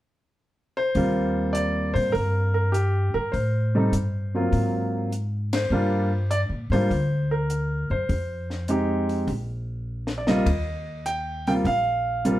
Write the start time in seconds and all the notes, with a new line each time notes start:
0.77 C5
0.95 D#2 G3 A#3 C4 F4, kick, open hi-hat
1.53 D5, closed hi-hat
1.94 A#2 C5, open hi-hat
2.12 G2 A#4, kick, open hi-hat
2.54 A#4
2.72 G4, closed hi-hat
3.14 G2 A#4
3.32 A2 C5, kick, open hi-hat
3.75 G3 A3 C4 D#4
3.92 G2, closed hi-hat
4.34 F#3 A#3 C4 F4
4.52 G#2, kick, open hi-hat
5.12 closed hi-hat
5.53 C5, snare, ride
5.70 G2 G3 A#3 D4 F4
6.31 D5, closed hi-hat
6.49 A#2
6.70 G#2 G3 A#3 D4 F4 C5, open hi-hat
6.91 D2, kick, open hi-hat
7.31 A#4
7.50 closed hi-hat
7.90 F#2 C5
8.09 F2, kick, open hi-hat
8.50 snare
8.68 G#3 C4 D#4 G4, closed hi-hat
9.09 open hi-hat
9.27 A#1, kick, open hi-hat
10.07 snare
10.18 D5
10.27 G3 A#3 C4 F4 D#5, snare
10.46 D#2, kick, ride
11.06 G5, closed hi-hat
11.47 G3 A#3 C4 F4 G5, open hi-hat
11.65 A#1 F5, kick, open hi-hat
12.25 G3 A#3 C4 F4, closed hi-hat